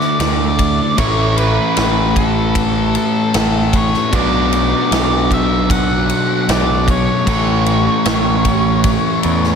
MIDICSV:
0, 0, Header, 1, 5, 480
1, 0, Start_track
1, 0, Tempo, 786370
1, 596, Time_signature, 4, 2, 24, 8
1, 5831, End_track
2, 0, Start_track
2, 0, Title_t, "Lead electric guitar"
2, 0, Program_c, 0, 29
2, 0, Note_on_c, 0, 74, 75
2, 119, Note_off_c, 0, 74, 0
2, 126, Note_on_c, 0, 74, 81
2, 598, Note_off_c, 0, 74, 0
2, 601, Note_on_c, 0, 73, 90
2, 839, Note_on_c, 0, 71, 84
2, 845, Note_off_c, 0, 73, 0
2, 1323, Note_off_c, 0, 71, 0
2, 1326, Note_on_c, 0, 69, 92
2, 1804, Note_off_c, 0, 69, 0
2, 1812, Note_on_c, 0, 69, 72
2, 2293, Note_on_c, 0, 73, 73
2, 2297, Note_off_c, 0, 69, 0
2, 2531, Note_off_c, 0, 73, 0
2, 2535, Note_on_c, 0, 74, 85
2, 3254, Note_off_c, 0, 74, 0
2, 3257, Note_on_c, 0, 76, 96
2, 3486, Note_off_c, 0, 76, 0
2, 3488, Note_on_c, 0, 78, 92
2, 3975, Note_on_c, 0, 74, 89
2, 3977, Note_off_c, 0, 78, 0
2, 4212, Note_off_c, 0, 74, 0
2, 4215, Note_on_c, 0, 73, 72
2, 5831, Note_off_c, 0, 73, 0
2, 5831, End_track
3, 0, Start_track
3, 0, Title_t, "Overdriven electric guitar"
3, 0, Program_c, 1, 29
3, 0, Note_on_c, 1, 50, 73
3, 0, Note_on_c, 1, 57, 82
3, 0, Note_on_c, 1, 62, 84
3, 0, Note_on_c, 1, 66, 90
3, 580, Note_off_c, 1, 50, 0
3, 582, Note_off_c, 1, 57, 0
3, 585, Note_off_c, 1, 62, 0
3, 587, Note_off_c, 1, 66, 0
3, 595, Note_on_c, 1, 45, 87
3, 599, Note_on_c, 1, 52, 92
3, 603, Note_on_c, 1, 57, 82
3, 605, Note_on_c, 1, 61, 87
3, 610, Note_on_c, 1, 64, 94
3, 2500, Note_off_c, 1, 45, 0
3, 2502, Note_off_c, 1, 52, 0
3, 2504, Note_off_c, 1, 57, 0
3, 2505, Note_off_c, 1, 61, 0
3, 2507, Note_off_c, 1, 64, 0
3, 2518, Note_on_c, 1, 47, 79
3, 2521, Note_on_c, 1, 54, 76
3, 2525, Note_on_c, 1, 59, 80
3, 2529, Note_on_c, 1, 62, 98
3, 2533, Note_on_c, 1, 66, 85
3, 4423, Note_off_c, 1, 47, 0
3, 4427, Note_off_c, 1, 59, 0
3, 4429, Note_off_c, 1, 62, 0
3, 4434, Note_on_c, 1, 45, 73
3, 4435, Note_off_c, 1, 54, 0
3, 4437, Note_on_c, 1, 52, 84
3, 4440, Note_on_c, 1, 57, 90
3, 4444, Note_off_c, 1, 66, 0
3, 4446, Note_on_c, 1, 61, 86
3, 4447, Note_on_c, 1, 69, 99
3, 5831, Note_off_c, 1, 45, 0
3, 5831, Note_off_c, 1, 52, 0
3, 5831, Note_off_c, 1, 57, 0
3, 5831, Note_off_c, 1, 61, 0
3, 5831, Note_off_c, 1, 69, 0
3, 5831, End_track
4, 0, Start_track
4, 0, Title_t, "Picked electric bass"
4, 0, Program_c, 2, 34
4, 119, Note_on_c, 2, 38, 94
4, 481, Note_off_c, 2, 38, 0
4, 602, Note_on_c, 2, 33, 102
4, 963, Note_off_c, 2, 33, 0
4, 1082, Note_on_c, 2, 33, 90
4, 1806, Note_off_c, 2, 33, 0
4, 2042, Note_on_c, 2, 33, 88
4, 2403, Note_off_c, 2, 33, 0
4, 2520, Note_on_c, 2, 35, 99
4, 2881, Note_off_c, 2, 35, 0
4, 2999, Note_on_c, 2, 35, 89
4, 3725, Note_off_c, 2, 35, 0
4, 3958, Note_on_c, 2, 35, 89
4, 4321, Note_off_c, 2, 35, 0
4, 4437, Note_on_c, 2, 33, 100
4, 4800, Note_off_c, 2, 33, 0
4, 4918, Note_on_c, 2, 33, 88
4, 5463, Note_off_c, 2, 33, 0
4, 5644, Note_on_c, 2, 40, 84
4, 5831, Note_off_c, 2, 40, 0
4, 5831, End_track
5, 0, Start_track
5, 0, Title_t, "Drums"
5, 5, Note_on_c, 9, 38, 28
5, 66, Note_off_c, 9, 38, 0
5, 122, Note_on_c, 9, 51, 96
5, 126, Note_on_c, 9, 38, 105
5, 183, Note_off_c, 9, 51, 0
5, 187, Note_off_c, 9, 38, 0
5, 359, Note_on_c, 9, 36, 78
5, 360, Note_on_c, 9, 51, 76
5, 420, Note_off_c, 9, 36, 0
5, 421, Note_off_c, 9, 51, 0
5, 598, Note_on_c, 9, 51, 86
5, 599, Note_on_c, 9, 36, 90
5, 659, Note_off_c, 9, 51, 0
5, 660, Note_off_c, 9, 36, 0
5, 840, Note_on_c, 9, 51, 65
5, 901, Note_off_c, 9, 51, 0
5, 1078, Note_on_c, 9, 51, 94
5, 1082, Note_on_c, 9, 38, 103
5, 1139, Note_off_c, 9, 51, 0
5, 1143, Note_off_c, 9, 38, 0
5, 1319, Note_on_c, 9, 36, 80
5, 1320, Note_on_c, 9, 51, 72
5, 1380, Note_off_c, 9, 36, 0
5, 1381, Note_off_c, 9, 51, 0
5, 1558, Note_on_c, 9, 36, 109
5, 1559, Note_on_c, 9, 51, 88
5, 1619, Note_off_c, 9, 36, 0
5, 1620, Note_off_c, 9, 51, 0
5, 1799, Note_on_c, 9, 51, 61
5, 1860, Note_off_c, 9, 51, 0
5, 2040, Note_on_c, 9, 51, 92
5, 2044, Note_on_c, 9, 38, 113
5, 2101, Note_off_c, 9, 51, 0
5, 2105, Note_off_c, 9, 38, 0
5, 2278, Note_on_c, 9, 36, 89
5, 2279, Note_on_c, 9, 51, 72
5, 2339, Note_off_c, 9, 36, 0
5, 2340, Note_off_c, 9, 51, 0
5, 2405, Note_on_c, 9, 38, 33
5, 2466, Note_off_c, 9, 38, 0
5, 2519, Note_on_c, 9, 36, 99
5, 2520, Note_on_c, 9, 51, 78
5, 2580, Note_off_c, 9, 36, 0
5, 2581, Note_off_c, 9, 51, 0
5, 2762, Note_on_c, 9, 51, 63
5, 2823, Note_off_c, 9, 51, 0
5, 3003, Note_on_c, 9, 51, 89
5, 3007, Note_on_c, 9, 38, 112
5, 3064, Note_off_c, 9, 51, 0
5, 3068, Note_off_c, 9, 38, 0
5, 3239, Note_on_c, 9, 36, 67
5, 3244, Note_on_c, 9, 51, 62
5, 3300, Note_off_c, 9, 36, 0
5, 3305, Note_off_c, 9, 51, 0
5, 3479, Note_on_c, 9, 36, 114
5, 3483, Note_on_c, 9, 51, 86
5, 3540, Note_off_c, 9, 36, 0
5, 3544, Note_off_c, 9, 51, 0
5, 3720, Note_on_c, 9, 51, 60
5, 3781, Note_off_c, 9, 51, 0
5, 3961, Note_on_c, 9, 51, 84
5, 3965, Note_on_c, 9, 38, 105
5, 4022, Note_off_c, 9, 51, 0
5, 4026, Note_off_c, 9, 38, 0
5, 4198, Note_on_c, 9, 36, 85
5, 4200, Note_on_c, 9, 51, 65
5, 4259, Note_off_c, 9, 36, 0
5, 4261, Note_off_c, 9, 51, 0
5, 4437, Note_on_c, 9, 36, 97
5, 4439, Note_on_c, 9, 51, 86
5, 4498, Note_off_c, 9, 36, 0
5, 4500, Note_off_c, 9, 51, 0
5, 4678, Note_on_c, 9, 51, 57
5, 4739, Note_off_c, 9, 51, 0
5, 4917, Note_on_c, 9, 51, 85
5, 4921, Note_on_c, 9, 38, 108
5, 4978, Note_off_c, 9, 51, 0
5, 4982, Note_off_c, 9, 38, 0
5, 5157, Note_on_c, 9, 36, 71
5, 5157, Note_on_c, 9, 51, 70
5, 5218, Note_off_c, 9, 36, 0
5, 5218, Note_off_c, 9, 51, 0
5, 5394, Note_on_c, 9, 51, 82
5, 5397, Note_on_c, 9, 36, 112
5, 5455, Note_off_c, 9, 51, 0
5, 5458, Note_off_c, 9, 36, 0
5, 5635, Note_on_c, 9, 51, 63
5, 5696, Note_off_c, 9, 51, 0
5, 5761, Note_on_c, 9, 38, 30
5, 5822, Note_off_c, 9, 38, 0
5, 5831, End_track
0, 0, End_of_file